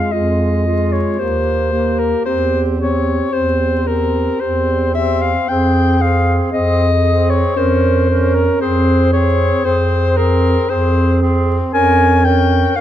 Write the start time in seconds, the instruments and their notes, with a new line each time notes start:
Already playing: tenor saxophone G#3, clarinet F4, soprano saxophone F5
0.12 bass clarinet F2, tenor saxophone G#3, clarinet F4, soprano saxophone D#5
0.66 tenor saxophone G#3, clarinet F4
0.92 soprano saxophone C#5
1.19 bass clarinet D#2, tenor saxophone A#3, clarinet G4, soprano saxophone C5
1.72 tenor saxophone A#3, clarinet G4
1.99 soprano saxophone A#4
2.25 bass clarinet E2, tenor saxophone C4, clarinet G4, soprano saxophone C5
2.78 tenor saxophone C4, clarinet G4, soprano saxophone C#5
3.32 bass clarinet E2, tenor saxophone C4, clarinet G4, soprano saxophone C5
3.86 tenor saxophone C4, clarinet G4, soprano saxophone A#4
4.40 bass clarinet E2, tenor saxophone C4, clarinet G4, soprano saxophone C5
4.94 tenor saxophone C4, clarinet G4, soprano saxophone E5
5.22 soprano saxophone F5
5.48 bass clarinet F2, tenor saxophone C4, clarinet G#4, soprano saxophone G5
6.00 tenor saxophone C4, clarinet G#4, soprano saxophone F5
6.52 bass clarinet F2, tenor saxophone C4, clarinet G#4, soprano saxophone D#5
7.04 tenor saxophone C4, clarinet G#4
7.30 soprano saxophone C#5
7.56 bass clarinet F2, tenor saxophone C#4, clarinet A#4, soprano saxophone C5
8.10 tenor saxophone C#4, clarinet A#4
8.35 soprano saxophone A#4
8.60 bass clarinet F2, tenor saxophone C4, clarinet G#4, soprano saxophone C5
9.13 tenor saxophone C4, clarinet G#4, soprano saxophone C#5
9.64 bass clarinet F2, tenor saxophone C4, clarinet G#4, soprano saxophone C5
10.17 tenor saxophone C4, clarinet G#4, soprano saxophone A#4
10.69 bass clarinet F2, tenor saxophone C4, clarinet G#4, soprano saxophone C5
11.21 tenor saxophone C4, clarinet G#4
11.73 bass clarinet F2, tenor saxophone C#4, clarinet A#4, soprano saxophone G#5
12.25 tenor saxophone C#4, clarinet A#4, soprano saxophone G5
12.76 bass clarinet F2, tenor saxophone C#4, clarinet A#4, soprano saxophone F5